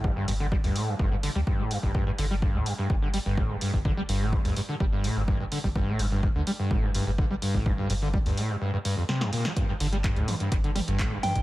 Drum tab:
HH |--o--oo---o---o-|--o---o---o---o-|--o--oo---o---o-|--o---o---o---o-|
CP |----------------|----------------|----------------|----------------|
SD |----------------|----------------|----------------|----------------|
T2 |----------------|----------------|----------------|----------------|
BD |o---o---o---o--o|o---o---o---o--o|o---o---o---o--o|o---o---o---o--o|

HH |--o--oo---o---o-|x-oxxxoxxxoxx-ox|
CP |----------------|----x-------x---|
SD |------------oo-o|----------------|
T2 |----------------|------o---o---o-|
BD |o---o-----------|o---o---o---o--o|